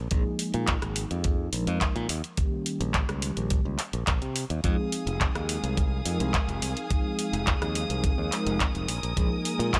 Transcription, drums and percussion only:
0.11 kick loud
0.11 closed hi-hat medium
0.39 open hi-hat loud
0.54 closed hi-hat soft
0.67 kick loud
0.67 clap loud
0.67 closed hi-hat medium
0.82 cross-stick medium
0.82 closed hi-hat soft
0.96 open hi-hat loud
1.11 closed hi-hat soft
1.24 kick loud
1.24 closed hi-hat medium
1.53 open hi-hat loud
1.67 closed hi-hat soft
1.81 kick loud
1.81 clap loud
1.81 closed hi-hat medium
1.96 closed hi-hat soft
2.09 open hi-hat loud
2.24 closed hi-hat soft
2.37 kick loud
2.37 closed hi-hat medium
2.66 open hi-hat loud
2.81 closed hi-hat soft
2.94 kick loud
2.94 clap loud
2.94 closed hi-hat medium
3.09 cross-stick medium
3.09 closed hi-hat soft
3.22 open hi-hat loud
3.37 closed hi-hat soft
3.50 kick loud
3.50 closed hi-hat medium
3.79 clap medium
3.79 open hi-hat loud
3.93 closed hi-hat soft
4.07 kick loud
4.07 clap loud
4.07 closed hi-hat medium
4.22 closed hi-hat soft
4.36 open hi-hat loud
4.50 closed hi-hat soft
4.64 kick loud
4.64 closed hi-hat medium
4.92 open hi-hat loud
5.07 closed hi-hat soft
5.21 kick loud
5.21 clap loud
5.21 closed hi-hat medium
5.35 cross-stick medium
5.35 closed hi-hat soft
5.49 open hi-hat loud
5.64 closed hi-hat soft
5.77 kick loud
5.77 closed hi-hat medium
6.06 open hi-hat loud
6.20 closed hi-hat soft
6.34 kick loud
6.34 clap loud
6.34 closed hi-hat medium
6.49 closed hi-hat soft
6.62 open hi-hat loud
6.77 closed hi-hat soft
6.90 kick loud
6.90 closed hi-hat medium
7.19 open hi-hat loud
7.33 closed hi-hat soft
7.47 kick loud
7.47 clap loud
7.47 closed hi-hat medium
7.62 cross-stick medium
7.62 closed hi-hat soft
7.75 open hi-hat loud
7.90 closed hi-hat soft
8.04 kick loud
8.04 closed hi-hat medium
8.32 clap medium
8.32 open hi-hat loud
8.47 closed hi-hat soft
8.60 kick loud
8.60 clap loud
8.60 closed hi-hat medium
8.75 closed hi-hat soft
8.88 open hi-hat loud
9.03 closed hi-hat soft
9.17 kick loud
9.17 closed hi-hat medium
9.45 open hi-hat loud
9.60 closed hi-hat soft
9.73 kick loud
9.73 clap loud
9.73 closed hi-hat medium

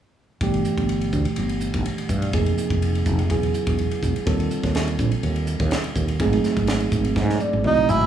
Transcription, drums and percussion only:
0.41 kick medium
0.41 ride medium
0.54 ride soft
0.65 hi-hat pedal medium
0.78 kick medium
0.78 ride soft
0.89 ride medium
1.01 ride soft
1.13 kick medium
1.13 hi-hat pedal medium
1.25 ride soft
1.36 ride medium
1.49 ride soft
1.61 hi-hat pedal medium
1.74 kick medium
1.74 ride medium
1.86 ride medium
1.98 ride medium
2.09 kick medium
2.09 hi-hat pedal medium
2.22 ride medium
2.33 kick medium
2.33 ride medium
2.46 ride soft
2.58 hi-hat pedal medium
2.70 kick medium
2.70 ride soft
2.82 ride medium
2.95 ride soft
3.06 kick medium
3.06 hi-hat pedal medium
3.19 ride soft
3.30 kick medium
3.30 ride medium
3.43 ride soft
3.54 hi-hat pedal medium
3.67 kick medium
3.67 ride soft
3.79 ride medium
3.91 ride soft
4.03 kick medium
4.03 hi-hat pedal medium
4.16 ride soft
4.27 kick medium
4.27 ride medium
4.40 ride soft
4.51 hi-hat pedal medium
4.63 kick medium
4.63 snare soft
4.63 ride soft
4.75 snare medium
4.75 ride medium
4.88 ride soft
4.99 kick medium
4.99 hi-hat pedal medium
5.12 ride medium
5.23 ride medium
5.36 ride soft
5.47 hi-hat pedal medium
5.60 kick medium
5.60 ride medium
5.71 snare medium
5.71 ride medium
5.84 ride medium
5.96 kick medium
5.96 hi-hat pedal medium
6.08 ride medium
6.20 kick medium
6.20 ride medium
6.33 ride soft
6.44 snare soft
6.44 hi-hat pedal medium
6.57 kick medium
6.57 ride soft
6.67 snare medium
6.67 ride medium
6.80 ride medium
6.92 kick medium
6.92 hi-hat pedal medium
7.05 ride medium
7.16 kick medium
7.16 snare soft
7.30 snare soft
7.40 hi-hat pedal medium
7.40 high tom medium
7.53 high tom soft
7.64 mid tom medium
7.77 mid tom medium
7.89 floor tom medium
7.89 hi-hat pedal medium
8.01 floor tom medium

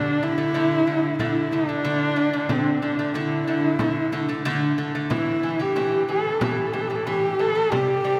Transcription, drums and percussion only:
0.23 frame drum soft
0.56 frame drum medium
0.88 frame drum soft
1.19 frame drum medium
1.51 frame drum soft
1.85 frame drum soft
2.16 frame drum soft
2.49 frame drum medium
3.14 frame drum medium
3.47 frame drum soft
3.79 frame drum medium
4.12 frame drum soft
4.46 frame drum medium
4.79 frame drum soft
5.11 frame drum medium
5.44 frame drum soft
5.76 frame drum medium
6.09 frame drum soft
6.41 frame drum medium
6.74 frame drum soft
7.06 frame drum medium
7.41 frame drum soft
7.72 frame drum medium
8.05 frame drum soft

